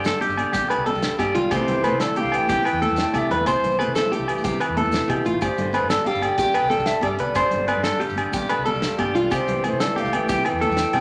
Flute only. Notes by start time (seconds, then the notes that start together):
Already playing: D5
1.51 C5
2.02 D5
2.19 F5
2.35 G5
3.01 G5
3.17 E5
3.32 B4
3.49 C5
5.42 C5
5.90 D5
6.05 F5
6.22 G5
6.86 E5
7.03 D5
7.19 D5
7.37 D5
9.34 C5
9.67 C5
9.83 D5
9.99 F5
10.14 G5
10.30 G5